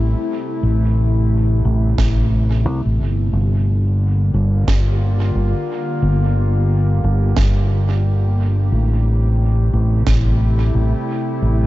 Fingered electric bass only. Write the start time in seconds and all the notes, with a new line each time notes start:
Already playing: A1
0.63 A1
1.65 A1
1.98 A1
2.65 C2
2.85 A1
2.99 G1
3.33 G1
4.34 G1
4.68 G1
5.35 G1
6.02 G1
7.04 G1
7.37 G1
8.72 A1
9.73 A1
10.07 A1
10.75 A1
11.42 A1